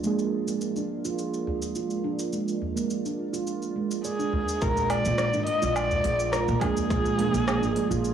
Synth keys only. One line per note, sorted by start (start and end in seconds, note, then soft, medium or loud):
0.03 4.58 F3 medium
0.03 4.58 G#3 medium
0.03 4.59 A#3 medium
0.03 4.59 D4 medium
0.07 4.60 G#4 medium
6.61 7.15 F3 loud
6.61 7.15 G#3 loud
6.61 7.16 A#3 medium
6.61 7.16 D4 medium
6.61 7.16 G#4 loud
7.17 7.72 F3 loud
7.17 7.72 G#3 medium
7.17 7.73 A#3 medium
7.17 7.73 D4 medium
7.17 7.73 G#4 loud
7.74 8.14 F3 medium
7.74 8.14 G#3 medium
7.74 8.14 A#3 medium
7.74 8.14 D4 medium
7.74 8.14 G#4 medium